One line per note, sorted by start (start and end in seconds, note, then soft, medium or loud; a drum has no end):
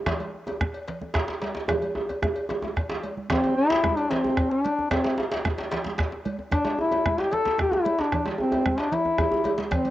0.06 bombo rim loud
0.06 bombo low loud
0.06 cowbell medium
0.06 djembe slap loud
0.06 djembe slap medium
0.06 low conga medium
0.06 djembe bass medium
0.20 cowbell soft
0.20 high conga medium
0.34 djembe slap soft
0.34 high conga soft
0.47 cowbell soft
0.47 djembe slap medium
0.47 djembe tone medium
0.61 bombo rim loud
0.61 bombo low loud
0.61 high conga medium
0.61 djembe bass medium
0.74 cowbell soft
0.88 cowbell medium
0.88 djembe slap medium
0.88 low conga medium
1.02 djembe tone medium
1.02 high conga medium
1.14 bombo rim loud
1.14 bombo low loud
1.14 cowbell soft
1.14 djembe slap loud
1.14 djembe slap soft
1.14 high conga soft
1.14 djembe bass medium
1.28 djembe slap medium
1.28 high conga soft
1.42 cowbell medium
1.42 djembe slap medium
1.42 high conga medium
1.55 djembe slap medium
1.55 djembe slap soft
1.55 djembe tone medium
1.55 high conga soft
1.68 bombo rim loud
1.68 bombo low loud
1.68 cowbell medium
1.68 djembe slap medium
1.68 djembe tone loud
1.68 high conga soft
1.68 djembe bass medium
1.68 low conga medium
1.82 cowbell medium
1.82 high conga medium
1.95 bombo rim soft
1.95 djembe slap soft
1.95 djembe tone loud
2.09 bombo rim soft
2.09 cowbell medium
2.09 djembe slap medium
2.09 djembe tone medium
2.22 bombo rim loud
2.22 bombo low loud
2.22 djembe tone medium
2.22 high conga medium
2.22 djembe bass medium
2.35 cowbell soft
2.35 high conga soft
2.49 bombo rim soft
2.49 cowbell soft
2.49 djembe slap medium
2.49 djembe tone medium
2.49 high conga soft
2.49 low conga medium
2.62 djembe tone loud
2.62 djembe tone medium
2.62 high conga medium
2.76 bombo rim medium
2.76 bombo low medium
2.76 cowbell medium
2.76 djembe slap soft
2.76 djembe bass medium
2.89 djembe slap loud
2.89 djembe slap medium
2.89 low conga soft
3.03 bombo rim soft
3.03 cowbell medium
3.03 djembe slap soft
3.03 high conga medium
3.17 high conga medium
3.30 3.55 C4 loud
3.30 bombo rim loud
3.30 bombo low loud
3.30 cowbell medium
3.30 djembe slap loud
3.30 djembe slap medium
3.30 djembe bass medium
3.30 low conga medium
3.44 cowbell medium
3.44 djembe tone medium
3.56 3.99 E4 loud
3.56 djembe slap soft
3.56 high conga soft
3.70 cowbell soft
3.70 djembe slap loud
3.70 djembe slap medium
3.70 djembe tone medium
3.83 bombo rim loud
3.83 bombo low loud
3.83 djembe tone medium
3.83 high conga medium
3.83 djembe bass medium
3.97 4.12 D4 loud
3.97 cowbell medium
4.10 4.52 C4 loud
4.10 cowbell medium
4.10 djembe slap loud
4.10 djembe slap medium
4.10 low conga medium
4.24 djembe tone medium
4.24 high conga medium
4.24 djembe tone medium
4.37 bombo rim loud
4.37 bombo low loud
4.37 cowbell medium
4.37 djembe slap soft
4.37 djembe bass medium
4.51 4.90 D4 loud
4.51 djembe slap medium
4.51 high conga soft
4.64 cowbell medium
4.64 high conga medium
4.79 djembe slap soft
4.79 djembe tone medium
4.79 high conga soft
4.91 5.19 C4 medium
4.91 bombo rim loud
4.91 bombo low loud
4.91 cowbell medium
4.91 djembe slap loud
4.91 djembe slap medium
4.91 djembe bass medium
4.91 low conga medium
5.04 djembe slap medium
5.04 high conga medium
5.18 djembe slap medium
5.18 high conga soft
5.19 djembe slap soft
5.32 cowbell medium
5.32 djembe slap loud
5.32 djembe slap medium
5.32 djembe tone medium
5.45 bombo rim loud
5.45 bombo low loud
5.45 djembe slap medium
5.45 high conga medium
5.45 djembe bass medium
5.58 cowbell medium
5.58 djembe slap medium
5.71 cowbell medium
5.71 djembe slap loud
5.71 djembe slap medium
5.71 low conga medium
5.85 djembe slap medium
5.85 djembe tone medium
5.85 high conga medium
5.98 bombo rim loud
5.98 bombo low loud
5.98 cowbell medium
5.98 djembe slap medium
5.98 djembe slap soft
5.98 high conga soft
5.98 djembe bass medium
6.12 djembe slap medium
6.12 high conga soft
6.25 cowbell medium
6.25 high conga medium
6.39 djembe slap soft
6.39 djembe tone medium
6.39 high conga soft
6.51 6.77 D4 loud
6.51 bombo rim loud
6.51 bombo low loud
6.51 cowbell medium
6.51 djembe slap medium
6.51 low conga medium
6.51 djembe bass medium
6.65 cowbell medium
6.65 djembe slap medium
6.65 high conga medium
6.79 7.22 E4 loud
6.79 djembe slap soft
6.79 djembe tone medium
6.79 high conga soft
6.91 cowbell medium
6.91 djembe slap medium
6.91 djembe tone medium
7.06 bombo rim loud
7.06 bombo low loud
7.06 high conga medium
7.06 djembe bass medium
7.18 7.35 G4 loud
7.18 cowbell soft
7.18 djembe slap medium
7.31 7.59 A4 loud
7.31 cowbell soft
7.31 djembe slap medium
7.31 low conga medium
7.45 djembe slap medium
7.45 djembe tone medium
7.45 high conga medium
7.58 7.75 G4 loud
7.58 bombo rim loud
7.58 bombo low loud
7.58 djembe slap soft
7.58 djembe tone medium
7.58 high conga soft
7.58 djembe bass medium
7.72 8.02 E4 loud
7.72 djembe slap medium
7.72 djembe tone medium
7.72 high conga soft
7.85 cowbell medium
7.85 high conga medium
7.99 8.26 D4 loud
7.99 djembe slap medium
7.99 djembe slap soft
7.99 djembe tone medium
7.99 high conga soft
8.12 bombo rim loud
8.12 bombo low loud
8.12 cowbell medium
8.12 djembe slap medium
8.12 djembe bass medium
8.12 low conga medium
8.26 cowbell soft
8.26 djembe slap medium
8.26 high conga medium
8.38 8.81 C4 loud
8.38 djembe tone medium
8.52 bombo rim soft
8.52 cowbell soft
8.52 djembe slap medium
8.52 djembe tone medium
8.66 bombo rim loud
8.66 bombo low loud
8.66 high conga medium
8.66 djembe bass medium
8.78 8.94 D4 loud
8.78 cowbell medium
8.78 djembe slap medium
8.78 high conga soft
8.92 9.59 E4 loud
8.92 cowbell soft
8.92 djembe slap medium
8.92 high conga soft
8.92 low conga medium
9.05 bombo rim soft
9.05 djembe tone medium
9.05 low conga soft
9.18 bombo rim medium
9.18 bombo low loud
9.18 cowbell medium
9.18 djembe tone medium
9.18 djembe bass medium
9.18 low conga soft
9.31 bombo rim soft
9.31 djembe tone medium
9.31 djembe bass soft
9.31 low conga medium
9.44 cowbell medium
9.44 djembe slap medium
9.44 djembe tone medium
9.44 high conga medium
9.58 djembe slap medium
9.58 high conga medium
9.71 9.90 C4 loud
9.71 bombo rim medium
9.71 bombo low medium
9.71 cowbell medium
9.71 djembe slap medium
9.71 djembe bass medium
9.71 low conga medium
9.85 cowbell medium
9.85 high conga medium